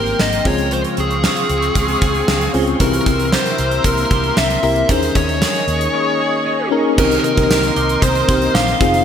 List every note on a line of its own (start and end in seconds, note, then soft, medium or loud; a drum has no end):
0.00 0.12 G#1 loud
0.00 0.47 G#2 medium
0.00 0.45 D#3 medium
0.00 0.47 A#3 medium
0.00 0.51 A#3 medium
0.00 0.19 C4 medium
0.00 0.45 C4 medium
0.00 0.48 G4 medium
0.00 0.51 G4 medium
0.00 0.46 G#4 medium
0.00 0.22 A#4 medium
0.00 0.44 A#4 medium
0.00 0.44 G5 medium
0.00 0.44 C6 medium
0.06 closed hi-hat soft
0.19 0.39 G#1 medium
0.19 0.97 C4 medium
0.19 0.47 D#5 loud
0.19 snare loud
0.33 closed hi-hat medium
0.45 0.83 C#2 medium
0.45 1.20 C#3 medium
0.45 0.70 F3 medium
0.45 1.29 G#3 medium
0.45 1.29 C4 medium
0.45 2.78 C4 medium
0.45 1.29 F4 medium
0.45 1.29 G#4 medium
0.45 0.73 C#5 loud
0.45 2.78 F5 medium
0.45 2.78 C#6 medium
0.45 kick loud
0.45 open hi-hat medium
0.58 closed hi-hat medium
0.71 2.80 F3 medium
0.71 0.80 C5 loud
0.71 closed hi-hat medium
0.84 closed hi-hat medium
0.97 1.26 C#2 loud
0.97 1.49 C4 medium
0.97 2.51 G#4 medium
0.97 closed hi-hat medium
1.11 closed hi-hat medium
1.23 2.01 G#4 medium
1.23 snare loud
1.37 closed hi-hat medium
1.49 1.68 C#2 medium
1.49 2.28 C4 medium
1.49 closed hi-hat medium
1.62 closed hi-hat medium
1.75 1.94 C#2 medium
1.75 2.53 G#3 medium
1.75 kick loud
1.75 closed hi-hat medium
1.88 closed hi-hat medium
2.01 2.21 C#2 medium
2.01 2.85 G#4 medium
2.01 kick loud
2.01 closed hi-hat medium
2.15 closed hi-hat soft
2.28 2.47 C#2 loud
2.28 3.06 C4 medium
2.28 snare loud
2.41 closed hi-hat medium
2.53 2.73 C#2 medium
2.53 2.86 G#3 medium
2.53 2.71 C4 medium
2.53 2.71 C#4 medium
2.53 2.71 F4 medium
2.53 2.71 G#4 medium
2.53 open hi-hat medium
2.67 closed hi-hat medium
2.80 2.99 C2 loud
2.80 3.54 C3 medium
2.80 4.88 E3 medium
2.80 3.48 C4 medium
2.80 3.49 E4 medium
2.80 3.49 G4 medium
2.80 4.87 A#4 medium
2.80 3.49 A#4 medium
2.80 3.33 A#4 medium
2.80 4.87 E5 medium
2.80 4.87 C6 medium
2.80 kick loud
2.80 closed hi-hat medium
2.93 closed hi-hat medium
3.06 3.34 C2 loud
3.06 3.57 C4 medium
3.06 kick loud
3.06 closed hi-hat medium
3.20 closed hi-hat medium
3.32 4.09 G4 medium
3.32 3.85 C5 medium
3.32 snare loud
3.46 closed hi-hat medium
3.58 3.78 C2 loud
3.58 4.35 C4 medium
3.58 closed hi-hat medium
3.71 closed hi-hat medium
3.84 4.03 C2 medium
3.84 4.62 A#3 medium
3.84 4.39 A#4 medium
3.84 kick loud
3.84 closed hi-hat loud
3.98 closed hi-hat medium
4.10 4.30 C2 medium
4.10 4.94 G4 medium
4.10 kick loud
4.10 closed hi-hat medium
4.24 closed hi-hat soft
4.37 4.56 C2 loud
4.37 4.94 C4 medium
4.37 4.63 E5 loud
4.37 snare loud
4.50 closed hi-hat medium
4.62 4.82 C2 loud
4.62 5.44 A#3 medium
4.62 4.80 C4 medium
4.62 4.80 E4 medium
4.62 4.80 G4 medium
4.62 4.80 A#4 medium
4.62 4.90 E5 loud
4.62 open hi-hat medium
4.76 closed hi-hat medium
4.88 5.08 D#2 loud
4.88 6.98 D#3 medium
4.88 5.63 D#3 medium
4.88 5.57 C#4 medium
4.88 5.57 D#4 medium
4.88 5.58 G#4 medium
4.88 6.96 G#4 medium
4.88 5.58 A#4 medium
4.88 5.16 C5 medium
4.88 6.96 D#5 medium
4.88 6.96 C#6 medium
4.88 kick loud
4.88 closed hi-hat medium
5.03 closed hi-hat medium
5.15 5.43 D#2 loud
5.15 5.66 C#4 medium
5.15 6.68 C#5 medium
5.15 kick loud
5.15 closed hi-hat medium
5.29 closed hi-hat soft
5.41 6.19 G#4 medium
5.41 snare loud
5.41 tambourine medium
5.55 closed hi-hat medium
5.67 5.86 D#2 loud
5.67 6.45 C#4 medium
5.67 closed hi-hat medium
5.81 closed hi-hat medium
5.94 6.72 A#3 medium
6.20 7.03 G#4 medium
6.46 7.03 C#4 medium
6.71 7.03 A#3 medium
6.71 6.88 C#4 medium
6.71 6.89 D#4 medium
6.71 6.89 G#4 medium
6.71 6.89 A#4 loud
6.97 7.17 C2 loud
6.97 7.72 C3 medium
6.97 8.80 D#3 medium
6.97 7.23 C4 medium
6.97 7.23 D#4 medium
6.97 7.24 G4 medium
6.97 7.24 A#4 medium
6.97 8.79 A#4 medium
6.97 7.23 A#4 medium
6.97 8.79 D#5 medium
6.97 8.79 C6 medium
6.97 kick loud
6.97 crash medium
7.12 closed hi-hat medium
7.24 8.27 A#3 medium
7.24 8.02 A#4 medium
7.24 closed hi-hat medium
7.37 7.47 C2 loud
7.37 7.97 C4 medium
7.37 7.97 D#4 medium
7.37 7.97 G4 medium
7.37 7.97 A#4 medium
7.37 kick medium
7.37 closed hi-hat medium
7.50 7.69 C2 loud
7.50 8.02 C4 medium
7.50 snare loud
7.50 tambourine medium
7.63 closed hi-hat medium
7.76 7.95 C2 medium
7.76 8.53 G4 medium
7.76 closed hi-hat medium
7.89 closed hi-hat medium
8.02 8.21 C2 loud
8.02 9.04 C4 medium
8.02 8.56 C5 loud
8.02 kick loud
8.02 closed hi-hat loud
8.15 closed hi-hat medium
8.28 8.47 C2 loud
8.28 8.86 A#3 medium
8.28 8.79 C4 medium
8.28 8.79 D#4 medium
8.28 8.80 G4 medium
8.28 8.80 C5 medium
8.28 kick loud
8.28 closed hi-hat medium
8.42 closed hi-hat soft
8.54 8.73 A#1 medium
8.54 8.86 G4 medium
8.54 9.04 F5 loud
8.54 snare loud
8.54 tambourine medium
8.68 closed hi-hat medium
8.80 9.04 F1 loud
8.80 9.04 D#3 medium
8.80 9.04 G#3 medium
8.80 9.04 C4 medium
8.80 9.04 D#4 medium
8.80 9.04 F4 medium
8.80 9.04 G#4 medium
8.80 9.04 F5 medium
8.80 9.04 D#6 medium
8.80 kick loud
8.80 closed hi-hat medium
8.94 closed hi-hat medium